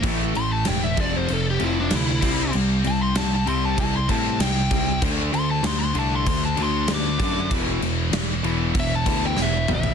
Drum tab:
CC |x-x-x-x-x-x-x-x-|x-x-x-x-x-x-x-x-|x-x-x-x-x-x-x-x-|x-x-x-x-x-x-----|
SD |----o-------o---|----o-------o---|----o-------o---|----o-------o---|
T2 |----------------|----------------|----------------|--------------o-|
FT |----------------|----------------|----------------|---------------o|
BD |o-----o-------o-|--------o-o---o-|o-------o-----o-|o-------o-o-----|